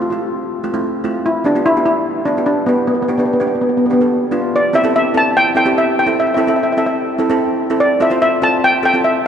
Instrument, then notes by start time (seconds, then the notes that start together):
steel pan
0.02 F4
0.10 A3 C4 F4
0.64 A3 C4 F4
0.74 A3 C4 E4
1.04 A3 C4 F4
1.26 E4
1.44 B3 D4 G4
1.55 B3 D4 F4
1.66 E4
1.77 B3 D4 G4
1.86 E4
2.25 B3 D4 F4
2.37 B3 D4 G4
2.46 D4
2.66 B3 D4 G4
2.87 B3
2.95 B3
3.02 B3
3.08 B3 D4 G4
3.18 B3 D4 G4
3.25 B3
3.33 B3
3.40 B3 D4 G4
3.47 B3
3.55 B3
3.61 B3
3.69 B3
3.77 B3
3.86 B3
3.90 B3 D4 G4
4.01 B3 D4 A4
4.31 B3 D4 F4
4.56 D5
4.73 C4 E4 G4 E5
4.84 C4 E4 A4
4.96 E5
5.14 C4 E4 A4 A5
5.37 G5
5.55 C4 E4 A4 G5
5.66 C4 E4 G4
5.78 E5
5.99 G5
6.07 C4 E4 A4
6.20 E5
6.27 E5
6.34 C4 E4 A4 E5
6.41 E5
6.47 C4 E4 A4 E5
6.56 E5
6.63 E5
6.72 E5
6.77 C4 E4 A4 E5
6.86 E5
7.18 C4 E4 A4
7.30 C4 E4 A4
7.70 C4 E4 A4
7.80 D5
8.00 C4 F4 A4 E5
8.10 C4 F4 C5
8.22 E5
8.42 C4 F4 A4 A5
8.64 G5
8.83 C4 F4 A4 G5
8.93 C4 F4 A4
9.04 E5